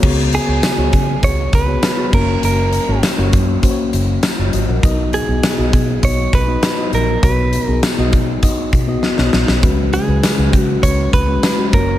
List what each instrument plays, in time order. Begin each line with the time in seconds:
0.02 fingered electric bass C#2, fm electric piano C#3 B3 F#4 G#4 C#5, kick, crash
0.33 clean electric guitar G#4, closed hi-hat
0.47 fingered electric bass C#2, fm electric piano B3 F#4 G#4 C#5
0.63 snare, closed hi-hat, tambourine
0.77 fingered electric bass C#2, fm electric piano B3 F#4 G#4 C#5
0.93 fingered electric bass C#3, kick, closed hi-hat
1.22 fingered electric bass C#2, fm electric piano B3 F#4 G#4 C#5, clean electric guitar C#5, kick, closed hi-hat
1.53 fingered electric bass C#2, clean electric guitar B4, kick, closed hi-hat
1.67 fm electric piano B3 F#4 G#4 C#5
1.83 snare, closed hi-hat, tambourine
1.97 fm electric piano B3 F#4 G#4 C#5
2.12 fingered electric bass F#1, fm electric piano A#3 C#4 F#4 C#5, clean electric guitar A#4, kick, crash
2.43 fingered electric bass F#1, clean electric guitar A#4, closed hi-hat
2.73 closed hi-hat
2.88 fingered electric bass G#1, fm electric piano A#3 C#4 F#4 C#5
3.03 snare, closed hi-hat, tambourine
3.17 fingered electric bass F#1, fm electric piano A#3 C#4 F#4 C#5
3.33 fingered electric bass F#2, kick, closed hi-hat
3.62 fm electric piano A#3 C#4 F#4 C5, kick, closed hi-hat
3.70 fm electric piano C#5
3.93 fingered electric bass F#1, closed hi-hat
4.23 snare, closed hi-hat, tambourine
4.38 fingered electric bass F#1, fm electric piano F4 C#5
4.53 fingered electric bass G#1, fm electric piano F#4 D#5, closed hi-hat
4.69 fingered electric bass A#1, fm electric piano A#4 F#5
4.83 fingered electric bass B1, fm electric piano B2 B3 D#4 F#4 D#5, kick, closed hi-hat
5.13 clean electric guitar G#4, closed hi-hat
5.28 fingered electric bass B1, fm electric piano B3 D#4 F#4 D#5
5.43 snare, closed hi-hat, tambourine
5.57 fingered electric bass B1, fm electric piano B3 D#4 F#4 D#5
5.73 fingered electric bass B2, kick, closed hi-hat
6.02 fingered electric bass B1, fm electric piano B3 D#4 F#4 D#5, clean electric guitar C#5, kick, closed hi-hat
6.33 fingered electric bass B1, clean electric guitar B4, kick, closed hi-hat
6.48 fm electric piano B3 D#4 F#4 D#5
6.63 snare, closed hi-hat, tambourine
6.77 fm electric piano B3 D#4 F#4 D#5
6.93 fingered electric bass A#1, clean electric guitar A#4, closed hi-hat
7.23 fingered electric bass B1, fm electric piano B2 B3 D#4 F#4 C#5, clean electric guitar B4, kick, closed hi-hat
7.53 closed hi-hat
7.64 fingered electric bass B1, fm electric piano B3 D#4, clean electric guitar A#4
7.68 fm electric piano F#4 G#4
7.83 snare, closed hi-hat, tambourine
7.98 fingered electric bass B1, fm electric piano B3 D#4 F#4 D#5
8.13 fingered electric bass B2, kick, closed hi-hat
8.42 fm electric piano B3 D#4 F#4 D#5, kick, closed hi-hat
8.73 fingered electric bass B2, kick, closed hi-hat
8.87 fm electric piano B3 D#4 F#4 D#5
9.03 snare
9.18 fingered electric bass B1, fm electric piano B3 D#4 F#4 C#5, snare
9.25 fm electric piano D#5
9.33 fingered electric bass A#1, snare
9.48 fingered electric bass B1, snare
9.62 fingered electric bass C#2, fm electric piano C#3 G#3 C#4 F#4 B4, kick, closed hi-hat
9.93 clean electric guitar G#4, closed hi-hat
10.07 fingered electric bass C#2, fm electric piano G#3 C#4 F#4 B4
10.23 snare, closed hi-hat, tambourine
10.38 fingered electric bass C#2, fm electric piano G#3 C#4 F#4 B4
10.53 fingered electric bass C#3, kick, closed hi-hat
10.60 clean electric guitar F#4
10.82 fingered electric bass C#2, fm electric piano G#3 C#4 F#4 B4, clean electric guitar C#5, kick, closed hi-hat
11.13 fingered electric bass C#2, clean electric guitar B4, kick, closed hi-hat
11.27 fm electric piano G#3 C#4 F#4 B4
11.43 snare, closed hi-hat, tambourine
11.58 fm electric piano G#3 C#4 F#4 B4
11.73 fingered electric bass F#1, fm electric piano A#3 C#4 F#4 C#5, clean electric guitar A#4, kick, closed hi-hat